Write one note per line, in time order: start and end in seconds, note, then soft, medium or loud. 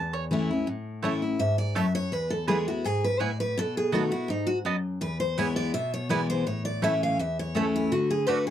0.00 0.64 E2 medium
0.00 0.13 A5 loud
0.13 0.24 C#5 loud
0.31 0.49 E3 medium
0.31 0.49 A3 medium
0.31 0.50 C#4 medium
0.31 0.49 E4 loud
0.51 0.68 C#4 soft
0.51 0.67 E4 medium
0.67 1.36 A2 medium
1.02 1.21 E3 medium
1.02 1.12 A3 medium
1.02 1.22 A3 medium
1.02 1.22 C#4 medium
1.02 1.12 E4 medium
1.02 1.21 E4 loud
1.02 1.13 C#5 loud
1.02 1.13 A5 medium
1.22 1.40 C#4 medium
1.22 1.39 E4 medium
1.39 1.74 G#2 medium
1.39 1.58 E5 medium
1.58 1.76 D5 medium
1.75 2.10 F#2 medium
1.75 1.85 A3 medium
1.75 1.85 E4 medium
1.75 1.85 C#5 loud
1.75 1.94 E5 medium
1.75 1.85 A5 loud
1.95 2.13 C#5 loud
2.12 2.81 E2 medium
2.12 2.31 B4 medium
2.30 2.47 A4 medium
2.47 2.67 E3 medium
2.47 2.67 G#3 medium
2.47 2.57 B3 loud
2.47 2.67 B3 medium
2.47 2.58 E4 medium
2.47 2.67 E4 loud
2.47 2.66 G#4 medium
2.47 2.58 B4 loud
2.47 2.58 G#5 loud
2.68 2.85 B3 soft
2.68 2.84 E4 medium
2.68 2.85 F#4 medium
2.84 3.19 G#2 medium
2.84 3.03 G#4 medium
3.04 3.21 B4 medium
3.20 3.55 A2 medium
3.20 3.30 B3 medium
3.20 3.30 E4 loud
3.20 3.30 B4 medium
3.20 3.39 D5 loud
3.20 3.30 G#5 loud
3.40 3.57 B4 medium
3.58 4.26 B2 loud
3.58 3.76 A4 medium
3.77 3.93 G#4 medium
3.92 4.11 D#3 medium
3.92 4.11 A3 medium
3.92 4.02 B3 medium
3.92 4.11 B3 medium
3.92 4.02 F#4 medium
3.92 4.10 F#4 loud
3.92 4.12 F#4 medium
3.92 4.02 D#5 loud
3.92 4.03 A5 loud
4.11 4.29 B3 medium
4.11 4.29 E4 medium
4.11 4.28 F#4 medium
4.28 4.63 G#2 medium
4.28 4.48 D#4 medium
4.47 4.57 F#4 medium
4.65 5.00 F#2 medium
4.65 4.75 B3 medium
4.65 4.75 F#4 medium
4.65 4.75 D#5 loud
4.65 4.75 A5 loud
5.01 5.70 E2 medium
5.01 5.19 B4 medium
5.20 5.38 C5 loud
5.38 5.72 E3 medium
5.38 5.73 G#3 loud
5.38 5.47 B3 medium
5.38 5.73 B3 medium
5.38 5.48 E4 medium
5.38 5.73 E4 medium
5.38 5.48 B4 medium
5.38 5.56 C#5 medium
5.38 5.48 G#5 loud
5.56 5.73 D5 loud
5.74 6.43 B2 medium
5.74 5.92 E5 loud
5.94 6.10 C#5 medium
6.09 6.44 E3 medium
6.09 6.45 G#3 medium
6.09 6.20 B3 medium
6.09 6.45 B3 medium
6.09 6.20 E4 medium
6.09 6.45 E4 medium
6.09 6.20 B4 loud
6.09 6.29 D5 loud
6.09 6.20 G#5 medium
6.30 6.46 C5 loud
6.46 7.16 A2 medium
6.46 6.65 C#5 medium
6.65 6.82 D5 loud
6.82 7.17 E3 medium
6.82 6.92 A3 medium
6.82 7.17 A3 medium
6.82 7.18 C#4 medium
6.82 6.92 E4 medium
6.82 7.18 E4 loud
6.82 6.92 C#5 loud
6.82 7.02 E5 medium
6.82 6.93 A5 medium
7.03 7.19 F5 loud
7.19 7.88 E2 medium
7.19 7.38 E5 medium
7.39 7.55 C#5 medium
7.55 7.89 E3 medium
7.55 7.90 A3 medium
7.55 7.65 A3 medium
7.55 7.90 C#4 loud
7.55 7.65 E4 medium
7.55 7.90 E4 medium
7.55 7.74 A4 medium
7.55 7.65 C#5 medium
7.55 7.65 A5 loud
7.76 7.92 E4 medium
7.92 8.27 D3 loud
7.92 8.10 F#4 medium
8.11 8.27 G#4 loud
8.27 8.50 D3 medium
8.27 8.37 A3 loud
8.27 8.50 A3 medium
8.27 8.50 D4 medium
8.27 8.37 F#4 medium
8.27 8.50 F#4 loud
8.27 8.46 B4 loud
8.27 8.38 D5 medium
8.27 8.38 F#5 medium
8.47 8.50 G#4 loud